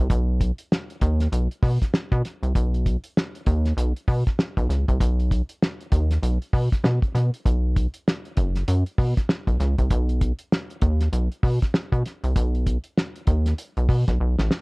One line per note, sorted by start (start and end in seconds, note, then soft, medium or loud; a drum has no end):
0.10 0.52 B1 loud
0.10 kick loud
0.10 closed hi-hat medium
0.41 kick medium
0.41 closed hi-hat medium
0.58 closed hi-hat soft
0.72 snare loud
0.90 closed hi-hat soft
1.01 1.28 D#2 loud
1.01 kick medium
1.01 closed hi-hat medium
1.20 snare soft
1.20 closed hi-hat medium
1.32 1.48 B1 medium
1.32 closed hi-hat medium
1.51 closed hi-hat soft
1.63 1.78 B2 loud
1.63 kick loud
1.63 open hi-hat medium
1.82 kick medium
1.82 snare soft
1.82 closed hi-hat medium
1.94 snare loud
2.12 2.22 B2 loud
2.12 kick medium
2.12 closed hi-hat soft
2.25 snare soft
2.25 closed hi-hat medium
2.43 2.53 C2 medium
2.43 closed hi-hat soft
2.55 2.97 B1 loud
2.55 kick loud
2.55 closed hi-hat medium
2.74 closed hi-hat soft
2.86 kick medium
2.86 closed hi-hat medium
3.04 closed hi-hat medium
3.17 snare loud
3.35 closed hi-hat soft
3.46 3.73 D#2 loud
3.46 kick loud
3.46 closed hi-hat medium
3.65 snare soft
3.65 closed hi-hat soft
3.77 3.93 B1 loud
3.77 closed hi-hat loud
3.96 closed hi-hat soft
4.08 4.24 B2 loud
4.08 kick loud
4.08 open hi-hat medium
4.27 kick medium
4.27 snare soft
4.27 closed hi-hat medium
4.39 snare loud
4.57 4.68 B1 loud
4.57 kick medium
4.57 closed hi-hat soft
4.69 4.85 C#2 medium
4.69 snare soft
4.69 closed hi-hat medium
4.88 4.99 C2 medium
4.88 kick medium
4.88 closed hi-hat soft
5.00 5.42 B1 loud
5.00 kick loud
5.00 closed hi-hat medium
5.20 closed hi-hat soft
5.31 kick medium
5.31 closed hi-hat medium
5.49 closed hi-hat soft
5.62 snare loud
5.81 closed hi-hat soft
5.92 6.18 D#2 medium
5.92 kick loud
5.92 closed hi-hat medium
6.11 snare soft
6.11 closed hi-hat medium
6.23 6.38 B1 medium
6.23 closed hi-hat medium
6.42 closed hi-hat soft
6.53 6.69 B2 loud
6.53 kick medium
6.53 open hi-hat medium
6.72 kick medium
6.72 snare soft
6.72 closed hi-hat medium
6.84 7.00 B2 medium
6.84 snare loud
7.02 kick medium
7.02 closed hi-hat soft
7.15 7.30 B2 medium
7.15 snare soft
7.15 closed hi-hat medium
7.34 closed hi-hat soft
7.45 7.87 B1 medium
7.45 kick loud
7.45 closed hi-hat medium
7.76 kick medium
7.76 closed hi-hat medium
7.94 closed hi-hat soft
8.08 snare loud
8.25 closed hi-hat soft
8.37 8.63 F#1 medium
8.37 kick medium
8.37 closed hi-hat medium
8.56 snare soft
8.56 closed hi-hat soft
8.68 8.84 F#2 medium
8.68 closed hi-hat loud
8.86 closed hi-hat soft
8.98 9.14 B2 medium
8.98 kick loud
8.98 open hi-hat medium
9.17 kick medium
9.17 snare soft
9.17 closed hi-hat medium
9.29 snare loud
9.47 9.58 B1 medium
9.47 kick medium
9.47 closed hi-hat soft
9.60 9.76 C#2 medium
9.60 snare soft
9.60 closed hi-hat medium
9.78 9.89 C2 medium
9.78 kick medium
9.78 closed hi-hat soft
9.91 10.32 B1 loud
9.91 kick loud
9.91 closed hi-hat loud
10.09 closed hi-hat soft
10.21 kick medium
10.21 closed hi-hat medium
10.39 closed hi-hat soft
10.52 snare loud
10.70 closed hi-hat soft
10.82 11.09 D#2 medium
10.82 kick loud
10.82 closed hi-hat medium
11.01 snare soft
11.01 closed hi-hat medium
11.13 11.29 B1 medium
11.13 closed hi-hat loud
11.32 closed hi-hat soft
11.43 11.59 B2 loud
11.43 kick loud
11.43 open hi-hat medium
11.62 kick medium
11.62 snare soft
11.62 closed hi-hat medium
11.74 snare loud
11.92 12.03 B2 loud
11.92 kick loud
11.92 closed hi-hat soft
12.06 snare soft
12.06 closed hi-hat medium
12.24 12.34 C2 loud
12.24 closed hi-hat soft
12.36 12.78 B1 loud
12.36 kick loud
12.36 closed hi-hat medium
12.55 closed hi-hat soft
12.66 kick medium
12.66 closed hi-hat medium
12.84 closed hi-hat soft
12.97 snare loud
13.16 closed hi-hat soft
13.27 13.54 D#2 medium
13.27 kick loud
13.27 closed hi-hat medium
13.46 snare soft
13.46 closed hi-hat medium
13.58 closed hi-hat medium
13.77 13.88 B1 medium
13.77 closed hi-hat soft
13.89 14.05 B2 loud
13.89 kick medium
13.89 open hi-hat medium
14.08 14.18 B1 medium
14.08 kick medium
14.08 snare soft
14.08 closed hi-hat medium
14.20 14.36 B1 medium
14.39 14.49 A1 loud
14.39 snare medium
14.51 snare medium